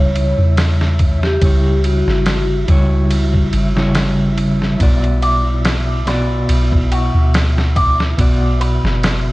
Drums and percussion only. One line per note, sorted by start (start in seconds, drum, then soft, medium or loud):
0.15 ride medium
0.57 snare loud
0.57 ride medium
0.81 snare medium
0.99 kick medium
0.99 ride medium
1.23 snare medium
1.42 kick loud
1.42 ride medium
1.84 ride medium
2.08 snare soft
2.26 snare loud
2.26 ride medium
2.68 kick medium
2.68 ride medium
3.11 ride medium
3.34 kick medium
3.53 ride medium
3.77 snare medium
3.95 snare loud
3.95 ride medium
4.38 ride medium
4.62 snare soft
4.80 kick loud
4.80 ride medium
5.04 ride soft
5.22 ride medium
5.65 snare loud
5.65 ride medium
6.07 snare soft
6.07 ride medium
6.49 ride medium
6.72 kick medium
6.92 ride medium
7.34 snare loud
7.34 ride medium
7.58 snare medium
7.76 kick medium
7.76 ride medium
8.00 snare medium
8.18 kick loud
8.18 ride medium
8.61 ride medium
8.85 snare soft
9.03 snare loud
9.03 ride medium